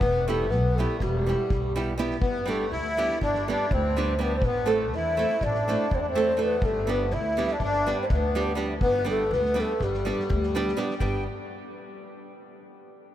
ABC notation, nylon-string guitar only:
X:1
M:9/8
L:1/8
Q:3/8=82
K:G
V:1 name="Nylon-string guitar"
z [G,B,EG] z [G,B,EG] z [G,B,EG] z [G,B,EG] [G,B,EG] | z [G,B,DG] z [G,B,DG] z [G,B,DG] z [G,B,DG] [G,B,DG] | z [A,CEA] z [A,CEA] z [A,CEA] z [A,CEA] [A,CEA] | z [G,B,DG] z [G,B,DG] z [G,B,DG] z [G,B,DG] [G,B,DG] |
z [G,B,DG] z [G,B,DG] z [G,B,DG] z [G,B,DG] [G,B,DG] | [G,B,DG] z8 |]